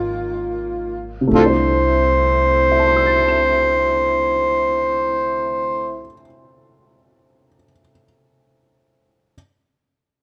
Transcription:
0.00 1.28 G#1 medium
0.00 1.15 D#3 medium
0.00 1.31 F3 soft
0.00 1.15 A#3 medium
0.00 1.32 A#3 soft
0.00 1.33 D#4 soft
0.00 1.15 F4 medium
0.00 1.33 G#4 soft
0.00 1.34 C#5 medium
1.21 6.00 C3 soft
1.27 6.06 C2 medium
1.27 6.06 A3 medium
1.32 6.07 D3 medium
1.32 6.07 A3 medium
1.32 6.07 C4 medium
1.32 6.13 D4 soft
1.32 6.07 E4 medium
1.32 1.41 F4 medium
1.32 1.43 A4 medium
1.32 6.10 C5 medium
1.40 6.19 E4 soft
1.46 6.25 C5 medium
2.72 7.47 E5 soft
2.79 7.54 A5 soft
2.88 7.63 C6 soft
2.96 7.71 E6 soft
3.06 7.81 A6 soft
3.17 7.92 C7 soft
3.28 8.03 E7 soft

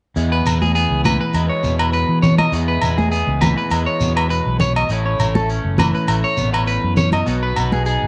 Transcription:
0.16 0.42 E2 medium
0.16 2.51 E2 medium
0.16 0.46 G#3 medium
0.16 0.75 B3 medium
0.16 2.51 G#4 medium
0.16 shekere medium
0.32 0.60 B4 medium
0.45 0.85 E2 medium
0.45 muted clean electric guitar stroke medium
0.45 low agogo medium
0.45 shekere medium
0.62 0.74 G#4 medium
0.62 high conga medium
0.62 shekere soft
0.75 1.62 B3 soft
0.75 1.04 G#4 medium
0.75 shekere medium
0.90 1.16 C#2 medium
1.04 3.41 E3 medium
1.04 1.19 B4 medium
1.04 high conga medium
1.04 low agogo medium
1.04 shekere medium
1.21 1.49 B4 medium
1.34 1.48 E2 medium
1.34 2.50 G#3 medium
1.34 low agogo medium
1.34 shekere medium
1.49 1.78 C#5 medium
1.63 2.03 E2 medium
1.63 2.49 B2 medium
1.63 2.52 B3 soft
1.63 shekere medium
1.79 1.92 B4 medium
1.79 low agogo medium
1.93 2.22 B4 medium
1.93 shekere medium
2.09 2.47 E3 medium
2.22 2.38 C#5 medium
2.22 low conga medium
2.22 shekere medium
2.38 2.52 D#5 medium
2.38 high conga medium
2.38 low agogo medium
2.52 2.78 E2 medium
2.52 4.90 E2 medium
2.52 2.82 G#3 medium
2.52 3.11 B3 medium
2.52 4.87 G#4 medium
2.52 shekere medium
2.68 2.97 B4 medium
2.82 3.21 E2 medium
2.82 3.71 G#3 soft
2.82 low agogo medium
2.82 shekere medium
2.98 3.10 G#4 medium
2.98 high conga medium
2.98 shekere soft
3.12 4.01 B3 medium
3.12 3.40 G#4 medium
3.12 shekere medium
3.27 3.53 C#2 medium
3.41 4.86 E3 medium
3.41 3.56 B4 medium
3.41 high conga medium
3.41 low conga medium
3.41 low agogo medium
3.41 shekere medium
3.57 3.86 B4 medium
3.57 shekere soft
3.70 3.85 E2 medium
3.70 4.87 G#3 medium
3.70 low agogo medium
3.70 shekere medium
3.86 4.15 C#5 medium
4.00 4.40 E2 medium
4.00 4.86 B2 medium
4.00 4.90 B3 soft
4.00 shekere medium
4.16 4.29 B4 medium
4.16 low agogo medium
4.30 4.59 B4 medium
4.30 shekere medium
4.46 4.84 B1 medium
4.60 4.75 C#5 medium
4.60 low conga medium
4.60 shekere medium
4.76 4.89 D#5 medium
4.76 low agogo medium
4.76 shekere soft
4.89 5.15 A1 medium
4.89 6.38 A2 medium
4.89 5.19 A3 medium
4.89 5.49 C#4 medium
4.89 7.27 E4 medium
4.89 shekere medium
5.06 5.34 C#5 medium
5.19 5.58 A1 medium
5.19 6.07 A3 medium
5.19 low agogo medium
5.19 shekere medium
5.35 5.48 A4 medium
5.35 high conga medium
5.35 shekere soft
5.49 6.38 C#4 medium
5.49 shekere medium
5.65 5.90 F#1 medium
5.78 7.23 E3 medium
5.78 5.94 B4 medium
5.78 high conga medium
5.78 low conga medium
5.78 low agogo medium
5.78 shekere medium
5.94 6.23 B4 medium
5.94 shekere soft
6.08 6.22 A1 loud
6.08 7.24 A3 medium
6.08 low agogo medium
6.08 shekere medium
6.24 6.52 C#5 medium
6.37 6.77 A1 medium
6.37 7.27 E2 medium
6.37 6.53 B3 soft
6.37 shekere medium
6.53 7.27 C#4 soft
6.53 6.66 B4 medium
6.53 low agogo medium
6.67 6.96 B4 medium
6.67 shekere medium
6.83 7.21 F#2 medium
6.97 7.12 C#5 medium
6.97 low conga medium
6.97 shekere medium
7.12 7.26 D#5 medium
7.12 high conga medium
7.12 low agogo medium
7.12 shekere soft
7.26 7.52 B1 medium
7.26 8.07 B2 medium
7.26 7.56 B3 medium
7.26 7.86 D#4 medium
7.26 8.07 F#4 medium
7.26 shekere medium
7.43 7.71 B4 medium
7.56 7.96 B1 medium
7.56 8.07 B3 medium
7.56 low agogo medium
7.56 shekere medium
7.72 7.85 G#4 medium
7.72 high conga medium
7.72 shekere soft
7.86 8.07 D#4 medium
7.86 8.07 G#4 medium
7.86 shekere medium
8.02 8.07 G#1 medium

